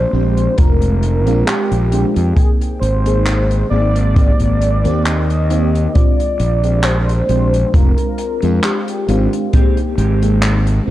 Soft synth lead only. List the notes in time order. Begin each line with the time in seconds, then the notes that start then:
Already playing: C5
0.57 A#4
1.46 G4
2.36 G#4
2.80 C5
3.70 D5
5.04 D#5
5.94 D5
6.84 C5
7.74 A#4
8.64 G4